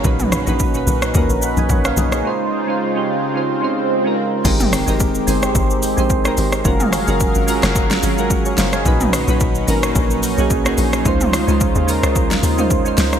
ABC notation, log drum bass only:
X:1
M:4/4
L:1/16
Q:"Swing 16ths" 1/4=109
K:Ab
V:1 name="Log drum bass" clef=bass
=B,,,3 ^A,,,3 B,,,2 ^D,, A,,,2 B,,, B,,,2 B,,,2 | z16 | A,,,3 A,,,3 G,,,2 A,,,3 B,,,3 A,,,2 | _G,,,3 G,,,2 A,,,2 G,,,3 A,,,4 G,,,2 |
=B,,,3 B,,,3 A,,,2 ^A,,,3 B,,,3 A,,,2 | D,,3 D,,2 E,,2 D,,3 E,,4 D,,2 |]